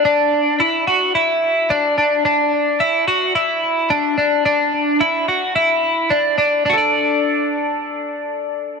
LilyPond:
\new Staff \with { instrumentName = "Clean electric guitar" } { \time 4/4 \key d \major \tempo 4 = 109 d'4 e'8 fis'8 e'4 d'8 d'8 | d'4 e'8 fis'8 e'4 d'8 d'8 | d'4 e'8 fis'8 e'4 d'8 d'8 | <d' fis' a' d''>1 | }